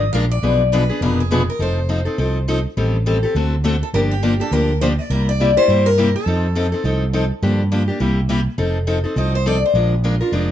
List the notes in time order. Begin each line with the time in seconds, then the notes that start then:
Already playing: D#5
0.13 A#1 F3 G#3 D4 F4 A#4 F5
0.31 D5
0.43 B1 B2 F3 B3 D4 G#4 B4
0.72 B2 F3 B3 D4 G#4 B4
0.89 B3 D4 G#4 B4
1.01 F1 B2 F3 B3 D4 G#4 A#4 B4
1.20 G#4
1.31 B2 F3 B3 D4 G#4 B4
1.50 A#4
1.59 F1 F3 C4 D#4 A4 C5
1.89 F3 C4 D#4 A4
2.05 C4 D#4 A4
2.18 C2 F3 C4 D#4 A4
2.48 F3 C4 D#4 A4
2.77 A1 D#3 G3 C4 G4 A4
3.06 D#3 G3 C4 G4 A4
3.23 C4 G4 A4
3.35 D2 D3 A3 C4 F#4 A4
3.64 D3 A3 C4 F#4 A4
3.83 A4
3.93 G1 D3 F3 A#3 D4 G4 A#4
4.11 G4
4.22 D3 F3 A#3 D4 G4
4.40 A#3 D4 G4 A4
4.51 D2 D3 F3 A#3 D4 G4 A#4
4.81 D3 F3 A#3 D4 G4 C5
4.99 D5
5.10 C2 C3 G3 A#3 E4 G4 A#4
5.29 D5
5.40 C3 G3 A#3 E4 G4
5.57 A#3 E4 G4 C5
5.68 G2 C3 G3 A#3 E4 G4
5.86 A#4
5.98 C3 G3 A#3 E4 G4
6.16 A4
6.26 F2 F3 C4 D#4 A4
6.55 F3 C4 D#4 A4
6.72 C4 D#4 A4
6.84 C2 F3 C4 D#4 A4
7.13 F3 C4 D#4 A4
7.42 G2 D3 F3 A#3 D4 G4
7.72 D3 F3 A#3 D4 G4
7.88 A#3 D4 G4
8.00 C2 C3 G3 A#3 E4 G4
8.29 C3 G3 A#3 E4 G4
8.58 F1 F3 C4 D#4 A4
8.87 F3 C4 D#4 A4
9.04 C4 D#4 A4
9.16 C2 F3 C4 D#4 A4 D#5
9.35 C5
9.46 F3 C4 D#4 A4 D5
9.66 C5
9.74 A#1 F3 G#3 D4 F4 A#4
10.04 F3 G#3 D4 F4 A#4
10.21 D4 F4 A#4
10.32 F1 F3 G#3 D4 F4 A#4